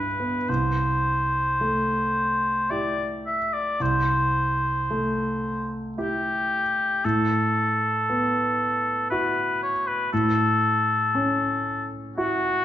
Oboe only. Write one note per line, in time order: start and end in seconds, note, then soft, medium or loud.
0.00 0.50 B4 soft
0.49 2.72 C5 medium
2.70 3.10 D5 medium
3.26 3.55 E5 medium
3.53 3.83 D5 medium
3.81 5.70 C5 medium
5.98 7.07 G4 medium
7.05 9.09 A4 medium
9.10 9.60 B4 medium
9.63 9.89 C#5 medium
9.87 10.12 B4 medium
10.13 11.87 A4 medium
12.18 12.65 F#4 medium